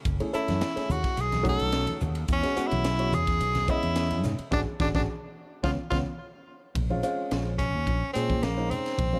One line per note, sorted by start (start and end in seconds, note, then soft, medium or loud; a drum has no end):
0.05 0.20 F#1 medium
0.05 kick loud
0.05 hi-hat pedal medium
0.05 ride medium
0.20 0.29 A3 medium
0.20 0.29 C#4 medium
0.20 0.29 E4 medium
0.20 0.30 G#4 medium
0.20 ride medium
0.33 0.61 A3 medium
0.33 0.62 C#4 medium
0.33 0.62 E4 medium
0.33 0.93 E4 medium
0.33 0.62 A4 loud
0.33 muted fretless electric bass stroke soft
0.33 hi-hat pedal medium
0.48 0.61 F#2 medium
0.48 snare soft
0.48 ride medium
0.48 high conga medium
0.61 snare loud
0.61 hi-hat pedal medium
0.61 ride medium
0.76 0.94 A3 medium
0.76 0.94 C#4 medium
0.76 0.95 E4 medium
0.76 0.95 G#4 medium
0.76 muted fretless electric bass stroke soft
0.76 snare soft
0.76 ride medium
0.89 1.03 D#2 medium
0.89 1.22 F#4 medium
0.89 hi-hat pedal medium
0.89 high conga medium
0.89 low conga medium
1.04 kick medium
1.04 snare soft
1.04 ride medium
1.17 1.57 B1 medium
1.17 1.24 D#4 soft
1.17 1.24 G#4 soft
1.17 1.47 G#4 medium
1.17 hi-hat pedal medium
1.17 ride medium
1.32 snare soft
1.32 ride medium
1.32 high conga medium
1.43 2.11 A3 medium
1.43 2.11 C#4 medium
1.43 2.11 D#4 medium
1.43 2.11 F#4 loud
1.43 kick medium
1.43 hi-hat pedal medium
1.43 high conga medium
1.49 1.99 A4 loud
1.59 1.87 B1 medium
1.59 ride medium
1.72 snare medium
1.72 hi-hat pedal medium
1.72 ride medium
1.87 ride medium
1.87 high conga medium
2.00 2.28 D#2 medium
2.00 hi-hat pedal medium
2.00 low conga medium
2.15 ride medium
2.28 2.43 E2 medium
2.28 kick loud
2.28 hi-hat pedal medium
2.28 ride medium
2.33 2.69 C#4 medium
2.43 2.52 G#3 medium
2.43 2.52 B3 medium
2.43 2.52 C#4 medium
2.43 2.52 F#4 medium
2.43 snare soft
2.43 ride medium
2.56 2.85 G#3 medium
2.56 2.85 B3 medium
2.56 2.85 C#4 medium
2.56 2.85 F#4 loud
2.56 muted fretless electric bass stroke soft
2.56 hi-hat pedal medium
2.67 3.15 E4 medium
2.67 ride medium
2.72 3.10 B1 medium
2.72 high conga medium
2.84 snare loud
2.84 hi-hat pedal medium
2.84 ride medium
2.99 3.17 G#3 medium
2.99 3.18 B3 medium
2.99 3.18 C#4 medium
2.99 3.18 F#4 medium
2.99 ride medium
3.12 3.39 E2 medium
3.12 3.71 G#4 loud
3.12 hi-hat pedal medium
3.12 high conga medium
3.12 low conga medium
3.27 3.34 G#4 soft
3.27 kick medium
3.27 snare soft
3.27 ride medium
3.41 3.67 B1 loud
3.41 3.48 C#4 soft
3.41 3.48 D#4 soft
3.41 hi-hat pedal medium
3.41 ride medium
3.55 snare soft
3.55 ride medium
3.55 high conga medium
3.68 4.35 G#3 medium
3.68 4.35 B3 medium
3.68 4.35 C#4 medium
3.68 4.25 E4 medium
3.68 4.35 D#5 loud
3.68 kick medium
3.68 hi-hat pedal medium
3.68 high conga medium
3.83 4.24 E2 medium
3.83 ride medium
3.96 snare medium
3.96 hi-hat pedal medium
3.96 ride medium
4.11 ride medium
4.11 high conga medium
4.23 4.38 G#2 medium
4.23 snare soft
4.23 hi-hat pedal medium
4.23 low conga medium
4.39 muted fretless electric bass stroke soft
4.39 ride soft
4.51 4.63 G#1 medium
4.51 4.61 D4 medium
4.51 4.60 D4 loud
4.51 4.61 F#4 medium
4.51 4.62 G#4 medium
4.51 kick medium
4.51 snare medium
4.51 high conga loud
4.80 4.91 G#1 medium
4.80 4.90 D4 medium
4.80 4.88 D4 medium
4.80 4.90 F#4 medium
4.80 4.90 G#4 medium
4.80 kick medium
4.80 snare medium
4.80 high conga medium
4.95 5.05 G#1 medium
4.95 5.03 D4 medium
4.95 5.01 D4 medium
4.95 5.03 F#4 medium
4.95 5.03 G#4 medium
4.95 kick medium
4.95 snare medium
4.95 high conga loud
5.63 5.75 C#2 medium
5.63 5.73 B3 loud
5.63 5.73 C#4 medium
5.63 5.73 F4 medium
5.63 5.71 F4 medium
5.63 kick medium
5.63 snare medium
5.63 high conga medium
5.90 6.03 C#2 medium
5.90 6.01 B3 medium
5.90 6.01 C#4 medium
5.90 5.98 F4 medium
5.90 6.01 F4 medium
5.90 kick medium
5.90 snare medium
5.90 high conga loud
6.75 7.02 A#1 medium
6.75 kick loud
6.75 ride medium
6.75 low conga medium
6.90 6.99 G#3 medium
6.90 6.99 C4 medium
6.90 6.99 C#4 medium
6.90 6.99 F4 medium
6.90 high conga medium
7.03 7.51 G#3 loud
7.03 7.51 C4 medium
7.03 7.51 C#4 medium
7.03 7.51 F4 loud
7.03 hi-hat pedal medium
7.03 ride medium
7.31 7.71 A#1 medium
7.31 snare loud
7.31 ride medium
7.58 8.11 C#4 medium
7.58 kick medium
7.58 snare soft
7.58 hi-hat pedal medium
7.58 ride medium
7.58 low conga medium
7.74 7.86 D#2 medium
7.74 7.80 C#4 soft
7.74 7.80 D#4 soft
7.87 8.01 A#1 loud
7.87 7.94 C#4 soft
7.87 7.94 D#4 soft
7.87 kick medium
7.87 ride medium
8.13 8.41 A#2 medium
8.13 8.43 G#3 medium
8.13 8.45 C4 medium
8.13 8.43 C4 medium
8.13 8.43 C#4 medium
8.13 8.43 G#4 loud
8.13 hi-hat pedal medium
8.13 ride medium
8.30 kick medium
8.30 high conga medium
8.43 8.69 A#1 loud
8.43 8.72 A#3 medium
8.43 snare loud
8.43 ride medium
8.57 8.94 G#3 medium
8.57 8.94 C4 medium
8.57 8.94 C#4 medium
8.57 8.94 D#4 medium
8.71 9.20 C4 medium
8.71 hi-hat pedal medium
8.71 ride medium
8.71 low conga medium
8.86 snare soft
8.86 ride soft
8.98 9.20 A#1 medium
8.98 kick loud
8.98 ride medium
8.98 low conga medium
9.13 9.20 G#3 medium
9.13 9.20 C4 medium
9.13 9.20 C#4 medium
9.13 9.20 F4 medium
9.13 high conga medium